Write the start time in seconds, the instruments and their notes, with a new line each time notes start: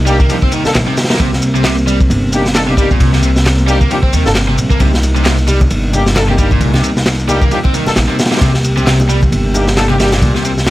Already playing: upright bass C2, tonewheel organ C3 G3 A#3 D#4
0.06 overdriven electric guitar G3, brass ensemble A#3 D4 D#4 G4, ride, shaker
0.20 overdriven electric guitar A#3, kick, shaker
0.29 overdriven electric guitar F3, brass ensemble A#3 D4 D#4 G4, ride, shaker
0.42 overdriven electric guitar C4, kick
0.52 overdriven electric guitar D#3, ride, shaker
0.65 brass ensemble A#3 D4 D#4 A4, muted upright bass stroke, snare, shaker
0.75 upright bass A#1, snare, clap, ride, shaker
0.87 overdriven electric guitar C3
0.97 snare, ride, shaker
1.03 snare, ride
1.10 overdriven electric guitar A#3, snare, ride, shaker
1.15 snare, ride
1.20 upright bass C2, overdriven electric guitar C3, tonewheel organ C4, kick, ride, shaker
1.33 snare
1.42 ride, shaker
1.55 overdriven electric guitar C3, ride, shaker
1.64 overdriven electric guitar C3, snare, clap, ride, shaker
1.78 shaker
1.87 overdriven electric guitar G3, ride, shaker
2.00 kick, shaker
2.10 upright bass G1, ride, shaker
2.33 brass ensemble A#3 D4 D#4 G4, ride, shaker
2.46 snare, shaker
2.55 brass ensemble A#3 D4 D#4 A4, snare, clap, ride, shaker
2.68 overdriven electric guitar C3, brass ensemble A#3 D4 D#4 G4
2.77 overdriven electric guitar G3, brass ensemble A#3 D4 D#4 G4, kick, ride, shaker
2.91 overdriven electric guitar A#2, kick, shaker
3.00 upright bass C2, kick, ride, shaker
3.13 overdriven electric guitar C3, snare, shaker
3.23 overdriven electric guitar C3, ride, shaker
3.36 snare, shaker
3.46 snare, clap, ride, shaker
3.58 ride, shaker
3.68 overdriven electric guitar G3, brass ensemble A#3 D4 D#4 G4, ride, shaker
3.81 overdriven electric guitar A#3, kick, shaker
3.90 overdriven electric guitar F3, brass ensemble A#3 D4 D#4 G4, ride, shaker
4.03 overdriven electric guitar C4, kick
4.13 upright bass D#2, overdriven electric guitar D#3, ride, shaker
4.26 upright bass G1, brass ensemble A#3 D4 D#4 A4, snare, shaker
4.35 snare, clap, ride, shaker
4.48 overdriven electric guitar C3
4.58 upright bass A#1, ride, shaker
4.71 overdriven electric guitar A#3, kick, shaker
4.80 upright bass C2, overdriven electric guitar C3, tonewheel organ D#4, kick, ride, muted conga, high conga, shaker
4.94 snare
5.03 ride, muted conga, shaker
5.16 overdriven electric guitar C3, ride, high conga, shaker
5.25 overdriven electric guitar C3, snare, clap, ride, shaker
5.38 muted conga, shaker
5.47 overdriven electric guitar G3, ride, high conga, shaker
5.61 kick, muted conga, low conga, shaker
5.70 upright bass G1, ride, shaker
5.93 brass ensemble A#3 D4 D#4 G4, ride, muted conga, high conga, shaker
6.06 snare, shaker
6.16 brass ensemble A#3 D4 D#4 A4, snare, clap, ride, muted conga, shaker
6.28 overdriven electric guitar C3, brass ensemble A#3 D4 D#4 G4, high conga
6.38 overdriven electric guitar G3, brass ensemble A#3 D4 D#4 G4, kick, ride, shaker
6.51 overdriven electric guitar A#2, kick, muted conga, shaker
6.61 upright bass C2, kick, ride, high conga, shaker
6.74 overdriven electric guitar C3, snare, muted conga
6.83 overdriven electric guitar C3, ride, shaker
6.97 snare, high conga, shaker
7.06 snare, clap, ride, muted conga, shaker
7.19 ride, shaker
7.29 overdriven electric guitar G3, brass ensemble A#3 D4 D#4 G4, ride, muted conga, high conga, shaker
7.41 overdriven electric guitar A#3, kick, low conga, shaker
7.51 overdriven electric guitar F3, brass ensemble A#3 D4 D#4 G4, ride, shaker
7.64 overdriven electric guitar C4, kick, muted conga
7.74 overdriven electric guitar D#3, ride, high conga, shaker
7.86 brass ensemble A#3 D4 D#4 A4, muted upright bass stroke, snare, muted conga, shaker
7.96 upright bass A#1, snare, clap, ride, shaker
8.09 overdriven electric guitar C3, high conga
8.19 snare, ride, muted conga, shaker
8.26 snare, ride
8.32 overdriven electric guitar C3, snare, ride, shaker
8.37 snare, ride
8.41 upright bass C2, overdriven electric guitar C3, tonewheel organ G4, kick, ride, muted conga, high conga, shaker
8.54 snare
8.64 ride, shaker
8.77 overdriven electric guitar C3, ride, muted conga, high conga, shaker
8.87 overdriven electric guitar C3, snare, clap, ride, shaker
9.00 muted conga, shaker
9.09 overdriven electric guitar G3, ride, high conga, shaker
9.22 kick, low conga, shaker
9.32 upright bass G1, ride, muted conga, shaker
9.54 brass ensemble A#3 D4 D#4 G4, ride, muted conga, high conga, shaker
9.67 snare, shaker
9.77 brass ensemble A#3 D4 D#4 A4, snare, clap, ride, shaker
9.89 overdriven electric guitar C3, brass ensemble A#3 D4 D#4 G4, muted conga, high conga
9.99 overdriven electric guitar G3, brass ensemble A#3 D4 D#4 G4, snare, ride, shaker
10.12 overdriven electric guitar A#2, snare, ride, muted conga, shaker
10.22 upright bass C2, kick, ride, high conga, shaker
10.35 overdriven electric guitar C3, snare
10.45 overdriven electric guitar C3, ride, muted conga, shaker
10.57 snare, high conga, shaker
10.67 snare